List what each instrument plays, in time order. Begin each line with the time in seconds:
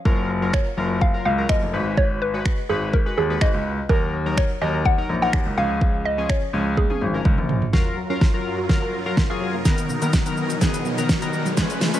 0.05 grand piano F#1, synth keys F#3 F4 A#4, kick
0.42 synth keys F#3 F4 A#4
0.53 synth pluck C#5, finger snap, kick
0.77 grand piano F#1, synth keys F#3 F4 A#4
1.01 synth pluck F5, kick
1.14 synth keys F#3 F4 A#4
1.25 grand piano C#2, synth pluck F5
1.38 synth keys F#3 F4 A#4
1.49 grand piano F#1, synth pluck D#5, finger snap, kick
1.62 grand piano F1
1.73 grand piano G#1, synth keys G#3 F#4 B4
1.97 synth pluck C#5, kick
2.22 synth pluck B4
2.34 synth keys G#3 F#4 B4
2.45 finger snap, kick
2.69 grand piano G#1, synth keys G#3 F#4 B4, synth pluck G#4
2.93 synth pluck A#4, kick
3.06 synth keys G#3 F#4 B4
3.17 grand piano D#2, synth pluck G#4
3.30 synth keys G#3 F#4 B4
3.41 grand piano G#1, synth pluck D#5, finger snap, kick
3.54 grand piano C#2
3.89 grand piano D#2, synth keys F#3 D#4 A#4, synth pluck A#4, kick
4.26 synth keys F#3 D#4 A#4
4.37 synth pluck C#5, finger snap, kick
4.61 grand piano D#2, synth keys F#3 D#4 A#4, synth pluck D#5
4.85 synth pluck F#5, kick
4.98 synth keys F#3 D#4 A#4
5.09 grand piano A#1
5.22 synth keys F#3 D#4 A#4, synth pluck F#5
5.33 grand piano D#2, finger snap, kick
5.46 grand piano C#2
5.57 grand piano C#2, synth keys F3 C#4 G#4, synth pluck F5
5.81 kick
6.05 synth pluck D#5
6.18 synth keys F3 C#4 G#4
6.29 synth pluck C#5, finger snap, kick
6.53 grand piano C#2, synth keys F3 C#4 G#4
6.77 synth pluck G#4, kick, high tom
6.90 synth keys F3 C#4 G#4, high tom
7.01 grand piano G#1, mid tom
7.14 synth keys F3 C#4 A#4
7.25 grand piano C#2, kick, mid tom
7.38 grand piano A#1, mid tom
7.49 floor tom
7.62 floor tom
7.73 supersaw synth F#2 F#3 F4 A#4, synth keys F#3 F4 A#4, synth arpeggio sound F#3, kick, snare, riser
7.97 synth arpeggio sound F#3
8.10 synth keys F#3 F4 A#4, synth arpeggio sound C#4
8.21 synth arpeggio sound F#3, kick, snare
8.34 synth keys F#3 F4 A#4
8.58 synth arpeggio sound F#4
8.69 synth keys F#3 F4 A#4, synth arpeggio sound F#3, kick, snare
8.82 synth arpeggio sound A#4
8.93 synth arpeggio sound F#3
9.06 synth keys F#3 F4 A#4
9.17 kick, snare
9.30 synth keys F#3 F4 G#4, synth arpeggio sound F5
9.41 synth arpeggio sound F#3
9.54 synth arpeggio sound A#3
9.65 supersaw synth B2 F#3 D#4, synth arpeggio sound B2, synth keys D#3 B3 A#4, kick, snare, closed hi-hat, shaker
9.78 closed hi-hat, shaker
9.89 synth arpeggio sound B2, shaker
10.02 synth keys D#3 B3 A#4, synth arpeggio sound A#3, closed hi-hat, shaker
10.13 synth arpeggio sound B2, kick, snare, closed hi-hat, shaker
10.26 synth keys D#3 B3 A#4, closed hi-hat, shaker
10.37 shaker
10.50 synth arpeggio sound D#4, closed hi-hat, shaker
10.61 synth arpeggio sound B2, synth keys D#3 B3 G#4, kick, snare, closed hi-hat, shaker
10.74 synth arpeggio sound B4, closed hi-hat, shaker
10.85 synth arpeggio sound B2, shaker
10.98 synth keys D#3 B3 A#4, closed hi-hat, shaker
11.09 kick, snare, closed hi-hat, shaker
11.22 synth keys D#3 B3 A#4, synth arpeggio sound A#5, closed hi-hat, shaker
11.33 synth arpeggio sound B2, shaker
11.46 synth arpeggio sound F#3, closed hi-hat, shaker
11.57 supersaw synth C#3 G#3 F4 B4, synth arpeggio sound C#3, synth keys F3 C#4 B4, kick, snare, closed hi-hat, shaker
11.70 closed hi-hat, shaker
11.81 synth arpeggio sound C#3, snare, open hi-hat, shaker
11.94 synth keys F3 C#4 B4, synth arpeggio sound G#3, closed hi-hat, shaker